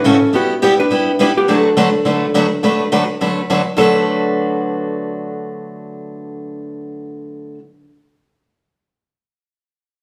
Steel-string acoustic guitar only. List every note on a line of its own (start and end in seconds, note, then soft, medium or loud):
0.04 0.15 A2 medium
0.04 0.16 C#3 medium
0.04 0.16 E3 medium
0.04 0.16 A3 medium
0.04 0.16 C#4 medium
0.04 0.16 F#4 medium
0.33 0.53 G3 medium
0.33 0.53 B3 medium
0.33 0.53 E4 medium
0.33 0.53 G4 medium
0.62 0.73 G3 medium
0.62 0.73 B3 medium
0.62 0.74 E4 medium
0.62 0.74 G4 medium
0.90 1.10 G3 medium
0.90 1.10 B3 medium
0.90 1.11 E4 medium
0.90 1.11 G4 medium
1.19 1.30 G3 medium
1.19 1.31 B3 medium
1.19 1.31 E4 medium
1.19 1.31 G4 medium
1.48 1.68 D3 medium
1.48 1.68 F#3 medium
1.48 1.68 A3 medium
1.48 1.68 D4 medium
1.48 1.68 F#4 medium
1.48 1.68 B4 medium
1.77 1.88 D3 medium
1.77 1.88 F#3 medium
1.77 1.88 A3 medium
1.77 1.88 D4 medium
1.77 1.89 F#4 medium
1.77 1.89 B4 medium
2.05 2.25 D3 medium
2.05 2.25 F#3 medium
2.05 2.25 A3 medium
2.05 2.26 D4 medium
2.05 2.26 F#4 medium
2.05 2.26 B4 medium
2.34 2.45 D3 medium
2.34 2.46 F#3 medium
2.34 2.46 A3 medium
2.34 2.46 D4 medium
2.34 2.46 F#4 medium
2.34 2.46 B4 medium
2.63 2.83 D3 medium
2.63 2.83 F#3 medium
2.63 2.83 A3 medium
2.63 2.83 D4 medium
2.63 2.83 F#4 medium
2.63 2.83 B4 medium
2.92 3.03 D3 medium
2.92 3.03 F#3 medium
2.92 3.03 A3 medium
2.92 3.03 D4 medium
2.92 3.03 F#4 medium
2.92 3.04 B4 medium
3.21 3.40 D3 medium
3.21 3.41 F#3 medium
3.21 3.41 A3 medium
3.21 3.41 D4 medium
3.21 3.41 F#4 medium
3.21 3.41 B4 medium
3.50 3.61 D3 medium
3.50 3.61 F#3 medium
3.50 3.61 A3 medium
3.50 3.61 D4 medium
3.50 3.61 F#4 medium
3.50 3.61 B4 medium
3.77 7.57 D3 medium
3.77 7.58 F#3 medium
3.77 7.58 A3 medium
3.77 7.59 D4 medium
3.77 7.59 F#4 medium
3.81 7.60 B4 medium